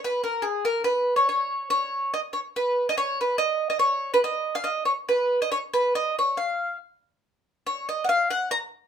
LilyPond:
\new Staff \with { instrumentName = "Mandolin" } { \time 3/4 \key cis \mixolydian \tempo 4 = 142 b'8 ais'8 gis'8 ais'8 b'8. cis''16 | cis''4 cis''4 dis''8 cis''8 | b'8. dis''16 cis''8 b'8 dis''8. dis''16 | cis''8. b'16 dis''8. eis''16 dis''8 cis''8 |
b'8. dis''16 cis''8 b'8 dis''8 cis''8 | eis''4 r2 | cis''8 dis''16. fis''32 eis''8 fis''8 ais''8 r8 | }